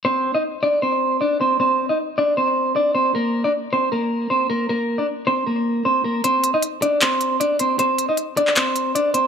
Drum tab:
HH |----------------|----------------|----------------|----------------|
CP |----------------|----------------|----------------|----------------|

HH |x-x-x-x-x-x-x-x-|x-x-x-x-x-x-x-x-|
CP |--------x-------|-------xx-------|